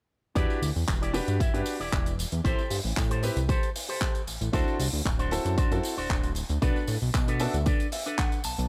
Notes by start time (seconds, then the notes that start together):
0.35 E2 D4 E4 F#4 G4 B4 D5, kick, closed hi-hat, tambourine
0.50 tambourine
0.62 D2, open hi-hat, tambourine
0.76 E2, tambourine
0.88 E1, kick, clap, closed hi-hat, tambourine
1.01 E4 G4 D5, closed hi-hat, tambourine
1.14 D4 F#4 G4 B4, open hi-hat, tambourine
1.28 G2, muted clean electric guitar stroke, closed hi-hat, tambourine
1.39 G2 E4 G4 E5, kick, closed hi-hat, tambourine
1.54 G2 D4 F#4 G4 B4, closed hi-hat, tambourine
1.66 open hi-hat, tambourine
1.80 E1 E4 G4 D5, tambourine
1.92 E1, kick, clap, closed hi-hat, tambourine
2.06 closed hi-hat, tambourine
2.19 open hi-hat, tambourine
2.32 E2, closed hi-hat, tambourine
2.44 A1 C4 E4 G4 A4 C5, kick, closed hi-hat, tambourine
2.59 tambourine
2.70 G2, open hi-hat, tambourine
2.84 A1, tambourine
2.97 A2, kick, clap, closed hi-hat, tambourine
3.10 G4 A4 C5, closed hi-hat, tambourine
3.23 C4 E4 G4 B4, open hi-hat, tambourine
3.36 C2, muted clean electric guitar stroke, closed hi-hat, tambourine
3.48 G4 A4 C5, kick, closed hi-hat, tambourine
3.63 closed hi-hat, tambourine
3.76 open hi-hat, tambourine
3.89 G4 A4 C5, tambourine
4.01 kick, clap, closed hi-hat, tambourine
4.15 closed hi-hat, tambourine
4.27 A1, open hi-hat, tambourine
4.41 A1, closed hi-hat, tambourine
4.53 D2 C4 D4 E4 F#4 A4 C5, kick, closed hi-hat, tambourine
4.68 tambourine
4.79 C2, open hi-hat, tambourine
4.93 D2, tambourine
5.05 D1, kick, clap, tambourine
5.19 D4 F#4 C5, closed hi-hat, tambourine
5.31 C4 E4 F#4 A4, open hi-hat, tambourine
5.45 F#2, muted clean electric guitar stroke, closed hi-hat, tambourine
5.57 F#2 D4 F#4 C5, kick, closed hi-hat, tambourine
5.71 F#2 C4 E4 F#4 A4, closed hi-hat, tambourine
5.83 open hi-hat, tambourine
5.97 D1 D4 F#4 C5, tambourine
6.10 D1, kick, clap, closed hi-hat, tambourine
6.23 closed hi-hat, tambourine
6.35 open hi-hat, tambourine
6.49 D2, closed hi-hat, tambourine
6.62 B1 B3 D4 F#4 A4 B4, kick, closed hi-hat, tambourine
6.76 tambourine
6.87 A2, open hi-hat, tambourine
7.02 B1, tambourine
7.14 B2, kick, clap, closed hi-hat, tambourine
7.28 D4 A4 B4, closed hi-hat, tambourine
7.40 B3 D4 F#4 A4 E5, open hi-hat, tambourine
7.54 D2, muted clean electric guitar stroke, closed hi-hat, tambourine
7.66 D4 A4 B4 D5, kick, closed hi-hat, tambourine
7.80 closed hi-hat, tambourine
7.92 E5, open hi-hat, tambourine
8.06 D4 A4 B4, closed hi-hat, tambourine
8.18 F#5, kick, clap, closed hi-hat, tambourine
8.32 closed hi-hat, tambourine
8.44 B1 A5, open hi-hat, tambourine
8.58 B1, closed hi-hat, tambourine